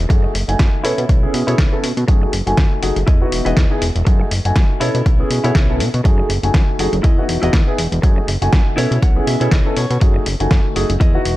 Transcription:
0.09 F#2 A3 D#4 F#4 G#4, muted clean electric guitar stroke, kick, closed hi-hat
0.23 muted clean electric guitar stroke
0.34 F#1, muted clean electric guitar stroke, open hi-hat
0.48 F#1 A3 D#4 F#4 G#5, closed hi-hat
0.59 F#2, kick, snare, closed hi-hat
0.84 B2 B3 C#4 E4 A4 C#5, open hi-hat
0.98 B2, closed hi-hat
1.09 B1, kick, closed hi-hat
1.22 B3 C#4 E4 G#4
1.34 B2, open hi-hat
1.47 B2 B3 C#4 E4 G#4 A4 C#5, closed hi-hat
1.58 B1, kick, snare, closed hi-hat
1.72 B3 C#4 E4 A4
1.83 B2, open hi-hat
1.97 B2, closed hi-hat
2.08 F#2 A3 D#4 F#4 G#4, muted clean electric guitar stroke, kick, closed hi-hat
2.22 muted clean electric guitar stroke
2.32 F#1, muted clean electric guitar stroke, open hi-hat
2.46 F#1 A3 D#4 F#4 G#5, closed hi-hat
2.57 F#2, kick, snare, closed hi-hat
2.82 F#1 A3 D#4 F#4 G#4, open hi-hat
2.96 F#1, closed hi-hat
3.07 E2 E4 G#4 D#5, kick, closed hi-hat
3.21 B3 D#4 E4 F#4
3.32 E1, open hi-hat
3.45 E1 B3 D#4 E4 F#4 G#4 D#5, closed hi-hat
3.57 E2, kick, snare, closed hi-hat
3.70 B3 D#4 E4 G#4
3.82 E1, open hi-hat
3.96 E1, closed hi-hat
4.05 F#2 A3 D#4 F#4 G#4, muted clean electric guitar stroke, kick, closed hi-hat
4.20 muted clean electric guitar stroke
4.31 F#1, muted clean electric guitar stroke, open hi-hat
4.45 F#1 A3 D#4 F#4 G#5, closed hi-hat
4.56 F#2, kick, snare, closed hi-hat
4.81 B2 B3 C#4 E4 A4 C#5, open hi-hat
4.95 B2, closed hi-hat
5.06 B1, kick, closed hi-hat
5.19 B3 C#4 E4 G#4
5.30 B2, open hi-hat
5.44 B2 B3 C#4 E4 G#4 A4 C#5, closed hi-hat
5.55 B1, kick, snare, closed hi-hat
5.69 B3 C#4 E4 A4
5.80 B2, open hi-hat
5.94 B2, closed hi-hat
6.04 F#2 A3 D#4 F#4 G#4, muted clean electric guitar stroke, kick, closed hi-hat
6.18 muted clean electric guitar stroke
6.29 F#1, muted clean electric guitar stroke, open hi-hat
6.43 F#1 A3 D#4 F#4 G#5, closed hi-hat
6.54 F#2, kick, snare, closed hi-hat
6.79 F#1 A3 D#4 F#4 G#4, open hi-hat
6.93 F#1, closed hi-hat
7.03 E2 E4 G#4 D#5, kick, closed hi-hat
7.18 B3 D#4 E4 F#4
7.29 E1, open hi-hat
7.42 E1 B3 D#4 E4 F#4 G#4 D#5, closed hi-hat
7.53 E2, kick, snare, closed hi-hat
7.67 B3 D#4 E4 G#4
7.78 E1, open hi-hat
7.92 E1, closed hi-hat
8.02 F#2 A3 D#4 F#4 G#4, muted clean electric guitar stroke, kick, closed hi-hat
8.16 muted clean electric guitar stroke
8.27 F#1, muted clean electric guitar stroke, open hi-hat
8.41 F#1 A3 D#4 F#4 G#5, closed hi-hat
8.53 F#2, kick, snare, closed hi-hat
8.77 B2 B3 C#4 E4 A4 C#5 E5, open hi-hat
8.91 B2, closed hi-hat
9.02 B1 F#5, kick, closed hi-hat
9.16 B3 C#4 E4 G#4
9.27 B2 E5, open hi-hat
9.40 B2 B3 C#4 E4 G#4 A4 C#5, closed hi-hat
9.51 B1 D#5, kick, snare, closed hi-hat
9.66 B3 C#4 E4 A4
9.77 B2 C#5, open hi-hat
9.90 B2, closed hi-hat
10.01 F#2 A3 D#4 F#4 G#4, muted clean electric guitar stroke, kick, closed hi-hat
10.14 muted clean electric guitar stroke
10.26 F#1, muted clean electric guitar stroke, open hi-hat
10.40 F#1 A3 D#4 F#4 G#5, closed hi-hat
10.51 F#2, kick, snare, closed hi-hat
10.76 F#1 A3 D#4 F#4 G#4, open hi-hat
10.90 F#1, closed hi-hat
11.00 E2 E4 G#4 D#5, kick, closed hi-hat
11.14 B3 D#4 E4 F#4
11.25 E1, open hi-hat

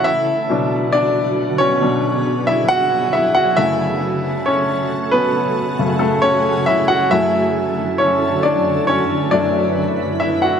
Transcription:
0.04 D3 F#3 B3 E4 F#4 E5
0.49 B2 F#3 D4
0.92 D4 D5
1.58 C#4 C#5
1.82 B2 F#3 D4 G#4
2.47 E4 E5
2.68 F#4 F#5
3.13 E4 E5
3.35 F#4 F#5
3.57 F#2 C#3 A3 E4 F#4 A4 E5
4.46 C#4 C#5
5.11 B3 B4
5.35 G#4
5.79 F#2 C#3 A3
5.99 A3 A4
6.22 C#4 C#5
6.66 E4 E5
6.88 F#4 F#5
7.11 F#2 D3 F#3 A3 E4 A4 E5
7.98 C#4 C#5
8.43 D4 D5
8.87 C#4 B4 C#5
9.31 F#2 F#3 A3 D4 D5
10.20 E4 E5
10.42 F#4 F#5

